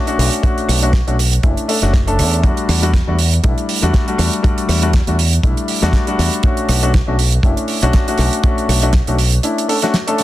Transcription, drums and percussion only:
0.07 closed hi-hat
0.19 cross-stick, open hi-hat
0.33 closed hi-hat
0.43 kick, closed hi-hat
0.58 closed hi-hat
0.69 cross-stick, open hi-hat
0.82 closed hi-hat
0.93 kick, snare, closed hi-hat
1.08 closed hi-hat
1.19 open hi-hat
1.33 closed hi-hat
1.43 kick, closed hi-hat
1.57 closed hi-hat
1.69 open hi-hat
1.82 snare, closed hi-hat
1.93 kick, snare, closed hi-hat
2.08 closed hi-hat
2.19 cross-stick, open hi-hat
2.34 closed hi-hat
2.44 kick, closed hi-hat
2.57 closed hi-hat
2.69 cross-stick, open hi-hat
2.83 closed hi-hat
2.94 kick, snare, closed hi-hat
3.19 open hi-hat
3.33 closed hi-hat
3.44 kick, closed hi-hat
3.58 closed hi-hat
3.69 open hi-hat
3.83 closed hi-hat
3.93 kick, snare, closed hi-hat
4.08 closed hi-hat
4.18 cross-stick, open hi-hat
4.33 closed hi-hat
4.44 kick, closed hi-hat
4.58 closed hi-hat
4.69 cross-stick, open hi-hat
4.83 closed hi-hat
4.93 kick, snare, closed hi-hat
5.07 closed hi-hat
5.19 open hi-hat
5.33 closed hi-hat
5.43 kick, closed hi-hat
5.57 closed hi-hat
5.68 open hi-hat
5.83 snare
5.93 kick, snare, closed hi-hat
6.07 closed hi-hat
6.19 cross-stick, open hi-hat
6.33 closed hi-hat
6.43 kick, closed hi-hat
6.57 closed hi-hat
6.69 cross-stick, open hi-hat
6.83 closed hi-hat
6.94 kick, snare, closed hi-hat
7.19 open hi-hat
7.32 closed hi-hat
7.43 kick, closed hi-hat
7.57 closed hi-hat
7.68 open hi-hat
7.83 closed hi-hat
7.93 kick, snare, closed hi-hat
8.08 closed hi-hat
8.18 cross-stick, open hi-hat
8.33 closed hi-hat
8.43 kick, closed hi-hat
8.58 closed hi-hat
8.69 cross-stick, open hi-hat
8.82 closed hi-hat
8.93 kick, snare, closed hi-hat
9.07 closed hi-hat
9.18 open hi-hat
9.32 closed hi-hat
9.43 closed hi-hat
9.58 closed hi-hat
9.69 open hi-hat
9.82 snare, closed hi-hat
9.94 snare, closed hi-hat
10.08 closed hi-hat
10.18 cross-stick, open hi-hat

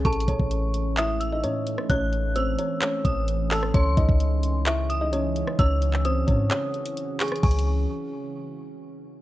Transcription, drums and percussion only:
0.05 kick, closed hi-hat
0.13 closed hi-hat
0.20 closed hi-hat
0.28 kick, closed hi-hat
0.39 kick
0.51 closed hi-hat
0.74 closed hi-hat
0.97 clap, closed hi-hat
1.21 closed hi-hat
1.43 closed hi-hat
1.67 closed hi-hat
1.78 cross-stick
1.89 kick, closed hi-hat
2.13 closed hi-hat
2.36 closed hi-hat
2.59 closed hi-hat
2.82 clap, closed hi-hat
3.05 kick, closed hi-hat
3.28 closed hi-hat
3.51 clap, open hi-hat
3.63 cross-stick
3.74 kick, closed hi-hat
3.97 kick, closed hi-hat
4.09 kick
4.20 closed hi-hat
4.43 closed hi-hat
4.66 clap, closed hi-hat
4.90 closed hi-hat
5.13 closed hi-hat
5.36 closed hi-hat
5.47 cross-stick
5.59 kick, closed hi-hat
5.82 closed hi-hat
5.93 clap
6.05 closed hi-hat
6.28 kick, closed hi-hat
6.51 clap, closed hi-hat
6.74 closed hi-hat
6.86 closed hi-hat
6.97 closed hi-hat
7.20 clap, closed hi-hat, open hi-hat
7.28 cross-stick, closed hi-hat
7.36 closed hi-hat
7.43 kick, closed hi-hat, crash
7.51 closed hi-hat
7.59 closed hi-hat

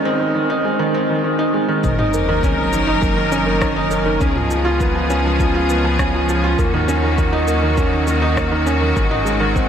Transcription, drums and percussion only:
1.84 kick, shaker
1.99 mid tom
2.14 shaker
2.43 kick, shaker
2.73 shaker
3.03 kick, shaker
3.32 shaker
3.62 kick, cross-stick, shaker
3.91 shaker
4.21 kick, shaker
4.36 mid tom
4.51 shaker
4.80 kick, shaker
5.10 shaker
5.40 kick, shaker
5.70 shaker
5.99 kick, cross-stick, shaker
6.29 shaker
6.59 kick, shaker
6.74 mid tom
6.89 shaker
7.18 kick, shaker
7.48 shaker
7.77 kick, shaker
8.07 shaker
8.37 kick, cross-stick, shaker
8.67 shaker
8.97 kick, shaker
9.11 mid tom
9.27 shaker
9.56 kick, shaker

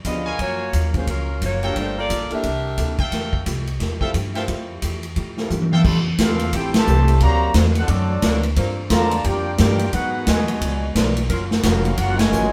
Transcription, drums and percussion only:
0.05 kick, hi-hat pedal, ride
0.39 kick, ride
0.73 kick, hi-hat pedal, ride
0.94 kick, ride
1.07 kick, ride
1.42 kick, hi-hat pedal, ride
1.63 ride
1.76 kick, ride
2.10 kick, hi-hat pedal, ride
2.31 ride
2.43 kick, ride
2.78 kick, hi-hat pedal, ride
2.99 kick, ride
3.12 kick, snare, ride
3.33 kick
3.46 kick, hi-hat pedal, ride
3.67 ride
3.80 kick, snare, ride
4.01 kick
4.14 kick, hi-hat pedal, ride
4.35 snare, ride
4.48 kick, ride
4.82 kick, hi-hat pedal, ride
5.03 ride
5.16 kick, ride
5.37 snare
5.50 hi-hat pedal, high tom
5.62 high tom
5.73 high tom
5.85 kick, crash
6.18 kick, snare, hi-hat pedal, ride
6.39 ride
6.53 kick, ride
6.74 snare, ride
6.87 hi-hat pedal
7.08 ride
7.20 kick, ride
7.54 kick, snare, hi-hat pedal, ride
7.75 ride
7.88 kick, ride
8.22 kick, snare, hi-hat pedal, ride
8.43 ride
8.56 kick, ride
8.90 kick, snare, hi-hat pedal, ride
9.11 ride
9.24 kick, ride
9.58 kick, snare, hi-hat pedal, ride
9.79 ride
9.93 kick, ride
10.27 kick, snare, hi-hat pedal, ride
10.48 ride
10.61 kick, ride
10.95 kick, snare, hi-hat pedal, ride
11.17 ride
11.30 kick, ride
11.51 snare
11.63 kick, snare, hi-hat pedal, ride
11.85 ride
11.97 kick, ride
12.19 snare, ride
12.32 hi-hat pedal

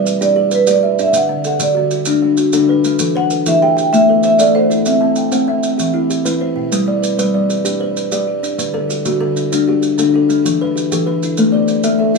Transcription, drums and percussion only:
0.06 maracas
0.22 maracas
0.51 maracas
0.67 maracas
0.99 maracas
1.14 maracas
1.44 maracas
1.60 maracas
1.91 maracas
2.05 maracas
2.37 maracas
2.53 maracas
2.84 maracas
2.99 maracas
3.30 maracas
3.46 maracas
3.78 maracas
3.94 maracas
4.23 maracas
4.39 maracas
4.71 maracas
4.86 maracas
5.16 maracas
5.32 maracas
5.63 maracas
5.79 maracas
6.10 maracas
6.26 maracas
6.72 maracas
7.04 maracas
7.19 maracas
7.50 maracas
7.65 maracas
7.97 maracas
8.12 maracas
8.44 maracas
8.59 maracas
8.90 maracas
9.05 maracas
9.37 maracas
9.53 maracas
9.83 maracas
9.99 maracas
10.30 maracas
10.46 maracas
10.77 maracas
10.92 maracas
11.23 maracas
11.37 maracas
11.68 maracas
11.83 maracas

